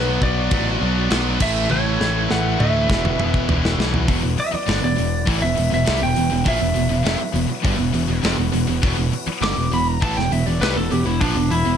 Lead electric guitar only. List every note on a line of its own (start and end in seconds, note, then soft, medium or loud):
0.00 0.24 B4 medium
0.23 1.37 D5 loud
1.42 1.70 E5 loud
1.71 2.31 C#5 loud
2.31 2.61 F#5 loud
2.60 3.74 E5 medium
4.40 4.55 E5 medium
4.55 4.82 D5 medium
4.84 5.41 D5 medium
5.42 5.71 E5 medium
5.74 6.01 E5 medium
6.03 6.45 G5 medium
6.48 8.21 E5 loud
9.43 9.72 D6 loud
9.74 9.88 B5 loud
9.88 10.02 A#5 medium
10.03 10.17 A5 medium
10.17 10.32 G5 loud
10.32 10.46 E5 medium
10.46 10.61 D5 medium
10.61 10.76 B4 medium
10.77 10.91 A4 medium
10.91 11.06 G4 medium
11.06 11.20 E4 medium
11.21 11.50 D4 medium
11.51 11.77 E4 medium